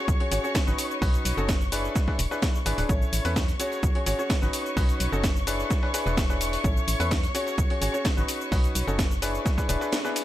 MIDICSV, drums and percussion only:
0, 0, Header, 1, 2, 480
1, 0, Start_track
1, 0, Tempo, 468750
1, 1042, Time_signature, 4, 2, 24, 8
1, 10490, End_track
2, 0, Start_track
2, 0, Title_t, "Drums"
2, 82, Note_on_c, 9, 36, 127
2, 83, Note_on_c, 9, 82, 89
2, 88, Note_off_c, 9, 82, 0
2, 88, Note_on_c, 9, 82, 45
2, 185, Note_off_c, 9, 36, 0
2, 191, Note_off_c, 9, 82, 0
2, 209, Note_on_c, 9, 42, 46
2, 311, Note_off_c, 9, 42, 0
2, 323, Note_on_c, 9, 46, 114
2, 323, Note_on_c, 9, 82, 71
2, 328, Note_off_c, 9, 82, 0
2, 328, Note_on_c, 9, 82, 76
2, 426, Note_off_c, 9, 46, 0
2, 431, Note_off_c, 9, 82, 0
2, 454, Note_on_c, 9, 82, 33
2, 556, Note_off_c, 9, 82, 0
2, 562, Note_on_c, 9, 36, 127
2, 563, Note_on_c, 9, 38, 117
2, 563, Note_on_c, 9, 82, 88
2, 565, Note_off_c, 9, 38, 0
2, 565, Note_on_c, 9, 38, 127
2, 568, Note_off_c, 9, 82, 0
2, 568, Note_on_c, 9, 82, 46
2, 664, Note_off_c, 9, 36, 0
2, 667, Note_off_c, 9, 38, 0
2, 671, Note_off_c, 9, 82, 0
2, 694, Note_on_c, 9, 82, 30
2, 796, Note_off_c, 9, 82, 0
2, 803, Note_on_c, 9, 82, 70
2, 804, Note_on_c, 9, 46, 113
2, 809, Note_off_c, 9, 82, 0
2, 809, Note_on_c, 9, 82, 77
2, 906, Note_off_c, 9, 46, 0
2, 911, Note_off_c, 9, 82, 0
2, 933, Note_on_c, 9, 82, 34
2, 1036, Note_off_c, 9, 82, 0
2, 1042, Note_on_c, 9, 36, 125
2, 1043, Note_on_c, 9, 46, 82
2, 1049, Note_on_c, 9, 82, 44
2, 1144, Note_off_c, 9, 36, 0
2, 1146, Note_off_c, 9, 46, 0
2, 1151, Note_off_c, 9, 82, 0
2, 1168, Note_on_c, 9, 42, 45
2, 1173, Note_on_c, 9, 82, 30
2, 1270, Note_off_c, 9, 42, 0
2, 1275, Note_off_c, 9, 82, 0
2, 1283, Note_on_c, 9, 46, 112
2, 1283, Note_on_c, 9, 82, 69
2, 1288, Note_off_c, 9, 82, 0
2, 1288, Note_on_c, 9, 82, 75
2, 1386, Note_off_c, 9, 46, 0
2, 1391, Note_off_c, 9, 82, 0
2, 1413, Note_on_c, 9, 82, 33
2, 1516, Note_off_c, 9, 82, 0
2, 1522, Note_on_c, 9, 36, 124
2, 1522, Note_on_c, 9, 38, 117
2, 1522, Note_on_c, 9, 82, 87
2, 1524, Note_off_c, 9, 38, 0
2, 1524, Note_on_c, 9, 38, 124
2, 1528, Note_off_c, 9, 82, 0
2, 1528, Note_on_c, 9, 82, 44
2, 1625, Note_off_c, 9, 36, 0
2, 1627, Note_off_c, 9, 38, 0
2, 1631, Note_off_c, 9, 82, 0
2, 1653, Note_on_c, 9, 82, 30
2, 1755, Note_off_c, 9, 82, 0
2, 1763, Note_on_c, 9, 46, 114
2, 1763, Note_on_c, 9, 82, 69
2, 1768, Note_off_c, 9, 82, 0
2, 1768, Note_on_c, 9, 82, 76
2, 1865, Note_off_c, 9, 46, 0
2, 1870, Note_off_c, 9, 82, 0
2, 1893, Note_on_c, 9, 82, 32
2, 1995, Note_off_c, 9, 82, 0
2, 2002, Note_on_c, 9, 36, 127
2, 2003, Note_on_c, 9, 82, 89
2, 2004, Note_on_c, 9, 38, 37
2, 2008, Note_off_c, 9, 82, 0
2, 2008, Note_on_c, 9, 82, 43
2, 2105, Note_off_c, 9, 36, 0
2, 2106, Note_off_c, 9, 38, 0
2, 2110, Note_off_c, 9, 82, 0
2, 2127, Note_on_c, 9, 36, 64
2, 2128, Note_on_c, 9, 38, 51
2, 2229, Note_off_c, 9, 36, 0
2, 2230, Note_off_c, 9, 38, 0
2, 2242, Note_on_c, 9, 46, 112
2, 2243, Note_on_c, 9, 82, 67
2, 2247, Note_off_c, 9, 82, 0
2, 2247, Note_on_c, 9, 82, 75
2, 2345, Note_off_c, 9, 46, 0
2, 2350, Note_off_c, 9, 82, 0
2, 2368, Note_on_c, 9, 38, 52
2, 2373, Note_on_c, 9, 82, 32
2, 2470, Note_off_c, 9, 38, 0
2, 2476, Note_off_c, 9, 82, 0
2, 2482, Note_on_c, 9, 36, 126
2, 2483, Note_on_c, 9, 38, 114
2, 2483, Note_on_c, 9, 82, 88
2, 2484, Note_off_c, 9, 38, 0
2, 2484, Note_on_c, 9, 38, 121
2, 2488, Note_off_c, 9, 82, 0
2, 2488, Note_on_c, 9, 82, 45
2, 2585, Note_off_c, 9, 36, 0
2, 2586, Note_off_c, 9, 38, 0
2, 2590, Note_off_c, 9, 82, 0
2, 2613, Note_on_c, 9, 82, 30
2, 2716, Note_off_c, 9, 82, 0
2, 2723, Note_on_c, 9, 38, 49
2, 2723, Note_on_c, 9, 46, 112
2, 2723, Note_on_c, 9, 82, 69
2, 2728, Note_off_c, 9, 82, 0
2, 2728, Note_on_c, 9, 82, 77
2, 2825, Note_off_c, 9, 46, 0
2, 2826, Note_off_c, 9, 38, 0
2, 2830, Note_off_c, 9, 82, 0
2, 2848, Note_on_c, 9, 46, 64
2, 2853, Note_on_c, 9, 82, 33
2, 2950, Note_off_c, 9, 46, 0
2, 2955, Note_off_c, 9, 82, 0
2, 2962, Note_on_c, 9, 36, 120
2, 2962, Note_on_c, 9, 82, 90
2, 2968, Note_off_c, 9, 82, 0
2, 2968, Note_on_c, 9, 82, 44
2, 3065, Note_off_c, 9, 36, 0
2, 3070, Note_off_c, 9, 82, 0
2, 3093, Note_on_c, 9, 82, 31
2, 3195, Note_off_c, 9, 82, 0
2, 3203, Note_on_c, 9, 46, 107
2, 3203, Note_on_c, 9, 82, 69
2, 3208, Note_off_c, 9, 82, 0
2, 3208, Note_on_c, 9, 82, 75
2, 3305, Note_off_c, 9, 46, 0
2, 3310, Note_off_c, 9, 82, 0
2, 3327, Note_on_c, 9, 46, 64
2, 3333, Note_on_c, 9, 82, 33
2, 3430, Note_off_c, 9, 46, 0
2, 3435, Note_off_c, 9, 82, 0
2, 3442, Note_on_c, 9, 36, 120
2, 3443, Note_on_c, 9, 38, 117
2, 3443, Note_on_c, 9, 82, 88
2, 3444, Note_off_c, 9, 38, 0
2, 3444, Note_on_c, 9, 38, 119
2, 3448, Note_off_c, 9, 82, 0
2, 3448, Note_on_c, 9, 82, 45
2, 3544, Note_off_c, 9, 36, 0
2, 3546, Note_off_c, 9, 38, 0
2, 3550, Note_off_c, 9, 82, 0
2, 3567, Note_on_c, 9, 42, 45
2, 3573, Note_on_c, 9, 82, 30
2, 3669, Note_off_c, 9, 42, 0
2, 3675, Note_off_c, 9, 82, 0
2, 3682, Note_on_c, 9, 38, 55
2, 3682, Note_on_c, 9, 46, 108
2, 3682, Note_on_c, 9, 82, 70
2, 3687, Note_off_c, 9, 82, 0
2, 3687, Note_on_c, 9, 82, 80
2, 3784, Note_off_c, 9, 38, 0
2, 3785, Note_off_c, 9, 46, 0
2, 3790, Note_off_c, 9, 82, 0
2, 3807, Note_on_c, 9, 38, 60
2, 3812, Note_on_c, 9, 82, 33
2, 3909, Note_off_c, 9, 38, 0
2, 3915, Note_off_c, 9, 82, 0
2, 3921, Note_on_c, 9, 82, 87
2, 3922, Note_on_c, 9, 36, 123
2, 3927, Note_off_c, 9, 82, 0
2, 3927, Note_on_c, 9, 82, 42
2, 4024, Note_off_c, 9, 36, 0
2, 4029, Note_off_c, 9, 82, 0
2, 4046, Note_on_c, 9, 42, 46
2, 4149, Note_off_c, 9, 42, 0
2, 4161, Note_on_c, 9, 82, 69
2, 4162, Note_on_c, 9, 46, 108
2, 4167, Note_off_c, 9, 82, 0
2, 4167, Note_on_c, 9, 82, 77
2, 4264, Note_off_c, 9, 46, 0
2, 4269, Note_off_c, 9, 82, 0
2, 4292, Note_on_c, 9, 82, 33
2, 4395, Note_off_c, 9, 82, 0
2, 4402, Note_on_c, 9, 36, 121
2, 4402, Note_on_c, 9, 38, 117
2, 4402, Note_on_c, 9, 82, 89
2, 4403, Note_off_c, 9, 38, 0
2, 4403, Note_on_c, 9, 38, 118
2, 4407, Note_off_c, 9, 82, 0
2, 4407, Note_on_c, 9, 82, 44
2, 4504, Note_off_c, 9, 36, 0
2, 4506, Note_off_c, 9, 38, 0
2, 4510, Note_off_c, 9, 82, 0
2, 4533, Note_on_c, 9, 82, 31
2, 4635, Note_off_c, 9, 82, 0
2, 4642, Note_on_c, 9, 46, 104
2, 4642, Note_on_c, 9, 82, 69
2, 4647, Note_off_c, 9, 82, 0
2, 4647, Note_on_c, 9, 82, 76
2, 4744, Note_off_c, 9, 46, 0
2, 4750, Note_off_c, 9, 82, 0
2, 4772, Note_on_c, 9, 82, 34
2, 4875, Note_off_c, 9, 82, 0
2, 4882, Note_on_c, 9, 36, 116
2, 4882, Note_on_c, 9, 46, 85
2, 4887, Note_on_c, 9, 82, 45
2, 4984, Note_off_c, 9, 36, 0
2, 4984, Note_off_c, 9, 46, 0
2, 4990, Note_off_c, 9, 82, 0
2, 5007, Note_on_c, 9, 42, 45
2, 5012, Note_on_c, 9, 82, 31
2, 5109, Note_off_c, 9, 42, 0
2, 5114, Note_off_c, 9, 82, 0
2, 5122, Note_on_c, 9, 46, 104
2, 5122, Note_on_c, 9, 82, 70
2, 5127, Note_off_c, 9, 82, 0
2, 5127, Note_on_c, 9, 82, 81
2, 5224, Note_off_c, 9, 46, 0
2, 5229, Note_off_c, 9, 82, 0
2, 5252, Note_on_c, 9, 82, 34
2, 5355, Note_off_c, 9, 82, 0
2, 5361, Note_on_c, 9, 38, 114
2, 5361, Note_on_c, 9, 82, 88
2, 5362, Note_on_c, 9, 36, 119
2, 5364, Note_off_c, 9, 38, 0
2, 5364, Note_on_c, 9, 38, 119
2, 5368, Note_off_c, 9, 82, 0
2, 5368, Note_on_c, 9, 82, 48
2, 5464, Note_off_c, 9, 36, 0
2, 5466, Note_off_c, 9, 38, 0
2, 5470, Note_off_c, 9, 82, 0
2, 5492, Note_on_c, 9, 82, 31
2, 5595, Note_off_c, 9, 82, 0
2, 5602, Note_on_c, 9, 46, 104
2, 5602, Note_on_c, 9, 82, 69
2, 5607, Note_off_c, 9, 82, 0
2, 5607, Note_on_c, 9, 82, 81
2, 5704, Note_off_c, 9, 46, 0
2, 5709, Note_off_c, 9, 82, 0
2, 5733, Note_on_c, 9, 82, 34
2, 5835, Note_off_c, 9, 82, 0
2, 5842, Note_on_c, 9, 36, 120
2, 5842, Note_on_c, 9, 82, 87
2, 5843, Note_on_c, 9, 38, 35
2, 5847, Note_off_c, 9, 82, 0
2, 5847, Note_on_c, 9, 82, 45
2, 5944, Note_off_c, 9, 36, 0
2, 5946, Note_off_c, 9, 38, 0
2, 5949, Note_off_c, 9, 82, 0
2, 5968, Note_on_c, 9, 38, 52
2, 6070, Note_off_c, 9, 38, 0
2, 6082, Note_on_c, 9, 46, 104
2, 6084, Note_on_c, 9, 82, 69
2, 6087, Note_off_c, 9, 82, 0
2, 6087, Note_on_c, 9, 82, 81
2, 6184, Note_off_c, 9, 46, 0
2, 6189, Note_off_c, 9, 82, 0
2, 6208, Note_on_c, 9, 38, 54
2, 6212, Note_on_c, 9, 82, 33
2, 6311, Note_off_c, 9, 38, 0
2, 6314, Note_off_c, 9, 82, 0
2, 6322, Note_on_c, 9, 36, 120
2, 6323, Note_on_c, 9, 38, 118
2, 6323, Note_on_c, 9, 82, 93
2, 6324, Note_off_c, 9, 38, 0
2, 6324, Note_on_c, 9, 38, 117
2, 6328, Note_off_c, 9, 82, 0
2, 6328, Note_on_c, 9, 82, 46
2, 6424, Note_off_c, 9, 36, 0
2, 6426, Note_off_c, 9, 38, 0
2, 6430, Note_off_c, 9, 82, 0
2, 6452, Note_on_c, 9, 82, 31
2, 6555, Note_off_c, 9, 82, 0
2, 6562, Note_on_c, 9, 46, 105
2, 6563, Note_on_c, 9, 38, 50
2, 6563, Note_on_c, 9, 82, 70
2, 6567, Note_off_c, 9, 82, 0
2, 6567, Note_on_c, 9, 82, 79
2, 6664, Note_off_c, 9, 46, 0
2, 6665, Note_off_c, 9, 38, 0
2, 6670, Note_off_c, 9, 82, 0
2, 6688, Note_on_c, 9, 46, 61
2, 6693, Note_on_c, 9, 82, 35
2, 6790, Note_off_c, 9, 46, 0
2, 6795, Note_off_c, 9, 82, 0
2, 6802, Note_on_c, 9, 36, 114
2, 6803, Note_on_c, 9, 82, 92
2, 6807, Note_off_c, 9, 82, 0
2, 6807, Note_on_c, 9, 82, 47
2, 6905, Note_off_c, 9, 36, 0
2, 6910, Note_off_c, 9, 82, 0
2, 6933, Note_on_c, 9, 82, 33
2, 7035, Note_off_c, 9, 82, 0
2, 7043, Note_on_c, 9, 46, 104
2, 7043, Note_on_c, 9, 82, 72
2, 7048, Note_off_c, 9, 82, 0
2, 7048, Note_on_c, 9, 82, 82
2, 7146, Note_off_c, 9, 46, 0
2, 7151, Note_off_c, 9, 82, 0
2, 7168, Note_on_c, 9, 46, 61
2, 7173, Note_on_c, 9, 82, 36
2, 7271, Note_off_c, 9, 46, 0
2, 7276, Note_off_c, 9, 82, 0
2, 7282, Note_on_c, 9, 38, 118
2, 7282, Note_on_c, 9, 82, 88
2, 7283, Note_on_c, 9, 36, 114
2, 7285, Note_off_c, 9, 38, 0
2, 7285, Note_on_c, 9, 38, 122
2, 7289, Note_off_c, 9, 82, 0
2, 7289, Note_on_c, 9, 82, 48
2, 7385, Note_off_c, 9, 36, 0
2, 7387, Note_off_c, 9, 38, 0
2, 7391, Note_off_c, 9, 82, 0
2, 7408, Note_on_c, 9, 42, 44
2, 7414, Note_on_c, 9, 82, 32
2, 7510, Note_off_c, 9, 42, 0
2, 7516, Note_off_c, 9, 82, 0
2, 7523, Note_on_c, 9, 38, 53
2, 7523, Note_on_c, 9, 82, 69
2, 7524, Note_on_c, 9, 46, 104
2, 7529, Note_off_c, 9, 82, 0
2, 7529, Note_on_c, 9, 82, 84
2, 7625, Note_off_c, 9, 38, 0
2, 7626, Note_off_c, 9, 46, 0
2, 7631, Note_off_c, 9, 82, 0
2, 7647, Note_on_c, 9, 38, 60
2, 7654, Note_on_c, 9, 82, 36
2, 7749, Note_off_c, 9, 38, 0
2, 7756, Note_off_c, 9, 82, 0
2, 7763, Note_on_c, 9, 36, 121
2, 7763, Note_on_c, 9, 82, 90
2, 7769, Note_off_c, 9, 82, 0
2, 7769, Note_on_c, 9, 82, 48
2, 7865, Note_off_c, 9, 36, 0
2, 7871, Note_off_c, 9, 82, 0
2, 7888, Note_on_c, 9, 42, 46
2, 7990, Note_off_c, 9, 42, 0
2, 8003, Note_on_c, 9, 82, 68
2, 8004, Note_on_c, 9, 46, 103
2, 8009, Note_off_c, 9, 82, 0
2, 8009, Note_on_c, 9, 82, 81
2, 8106, Note_off_c, 9, 46, 0
2, 8111, Note_off_c, 9, 82, 0
2, 8133, Note_on_c, 9, 82, 34
2, 8236, Note_off_c, 9, 82, 0
2, 8242, Note_on_c, 9, 38, 121
2, 8242, Note_on_c, 9, 82, 90
2, 8243, Note_on_c, 9, 36, 118
2, 8245, Note_off_c, 9, 38, 0
2, 8245, Note_on_c, 9, 38, 118
2, 8249, Note_off_c, 9, 82, 0
2, 8249, Note_on_c, 9, 82, 48
2, 8345, Note_off_c, 9, 36, 0
2, 8347, Note_off_c, 9, 38, 0
2, 8351, Note_off_c, 9, 82, 0
2, 8373, Note_on_c, 9, 82, 31
2, 8476, Note_off_c, 9, 82, 0
2, 8483, Note_on_c, 9, 46, 104
2, 8483, Note_on_c, 9, 82, 69
2, 8489, Note_off_c, 9, 82, 0
2, 8489, Note_on_c, 9, 82, 83
2, 8586, Note_off_c, 9, 46, 0
2, 8591, Note_off_c, 9, 82, 0
2, 8614, Note_on_c, 9, 82, 36
2, 8716, Note_off_c, 9, 82, 0
2, 8723, Note_on_c, 9, 36, 117
2, 8724, Note_on_c, 9, 46, 85
2, 8729, Note_on_c, 9, 82, 46
2, 8825, Note_off_c, 9, 36, 0
2, 8826, Note_off_c, 9, 46, 0
2, 8831, Note_off_c, 9, 82, 0
2, 8849, Note_on_c, 9, 42, 46
2, 8854, Note_on_c, 9, 82, 34
2, 8951, Note_off_c, 9, 42, 0
2, 8956, Note_off_c, 9, 82, 0
2, 8963, Note_on_c, 9, 46, 105
2, 8964, Note_on_c, 9, 82, 70
2, 8968, Note_off_c, 9, 82, 0
2, 8968, Note_on_c, 9, 82, 83
2, 9066, Note_off_c, 9, 46, 0
2, 9071, Note_off_c, 9, 82, 0
2, 9093, Note_on_c, 9, 82, 37
2, 9196, Note_off_c, 9, 82, 0
2, 9203, Note_on_c, 9, 36, 115
2, 9203, Note_on_c, 9, 38, 117
2, 9203, Note_on_c, 9, 82, 87
2, 9204, Note_off_c, 9, 38, 0
2, 9204, Note_on_c, 9, 38, 127
2, 9208, Note_off_c, 9, 82, 0
2, 9208, Note_on_c, 9, 82, 50
2, 9305, Note_off_c, 9, 36, 0
2, 9307, Note_off_c, 9, 38, 0
2, 9311, Note_off_c, 9, 82, 0
2, 9334, Note_on_c, 9, 82, 34
2, 9436, Note_off_c, 9, 82, 0
2, 9444, Note_on_c, 9, 46, 104
2, 9444, Note_on_c, 9, 82, 72
2, 9449, Note_off_c, 9, 82, 0
2, 9449, Note_on_c, 9, 82, 85
2, 9546, Note_off_c, 9, 46, 0
2, 9551, Note_off_c, 9, 82, 0
2, 9574, Note_on_c, 9, 82, 37
2, 9676, Note_off_c, 9, 82, 0
2, 9683, Note_on_c, 9, 36, 120
2, 9684, Note_on_c, 9, 82, 89
2, 9685, Note_on_c, 9, 38, 38
2, 9689, Note_off_c, 9, 82, 0
2, 9689, Note_on_c, 9, 82, 48
2, 9785, Note_off_c, 9, 36, 0
2, 9787, Note_off_c, 9, 38, 0
2, 9791, Note_off_c, 9, 82, 0
2, 9808, Note_on_c, 9, 36, 62
2, 9809, Note_on_c, 9, 38, 51
2, 9813, Note_on_c, 9, 82, 33
2, 9910, Note_off_c, 9, 36, 0
2, 9911, Note_off_c, 9, 38, 0
2, 9916, Note_off_c, 9, 82, 0
2, 9923, Note_on_c, 9, 46, 106
2, 9924, Note_on_c, 9, 82, 69
2, 9928, Note_off_c, 9, 82, 0
2, 9928, Note_on_c, 9, 82, 84
2, 10026, Note_off_c, 9, 46, 0
2, 10031, Note_off_c, 9, 82, 0
2, 10049, Note_on_c, 9, 38, 54
2, 10054, Note_on_c, 9, 82, 35
2, 10151, Note_off_c, 9, 38, 0
2, 10156, Note_off_c, 9, 82, 0
2, 10164, Note_on_c, 9, 38, 120
2, 10164, Note_on_c, 9, 82, 91
2, 10165, Note_off_c, 9, 38, 0
2, 10165, Note_on_c, 9, 38, 123
2, 10169, Note_off_c, 9, 82, 0
2, 10169, Note_on_c, 9, 82, 48
2, 10267, Note_off_c, 9, 38, 0
2, 10271, Note_off_c, 9, 82, 0
2, 10293, Note_on_c, 9, 82, 33
2, 10396, Note_off_c, 9, 82, 0
2, 10404, Note_on_c, 9, 38, 108
2, 10404, Note_on_c, 9, 46, 103
2, 10404, Note_on_c, 9, 82, 82
2, 10409, Note_off_c, 9, 82, 0
2, 10409, Note_on_c, 9, 82, 83
2, 10490, Note_off_c, 9, 38, 0
2, 10490, Note_off_c, 9, 46, 0
2, 10490, Note_off_c, 9, 82, 0
2, 10490, End_track
0, 0, End_of_file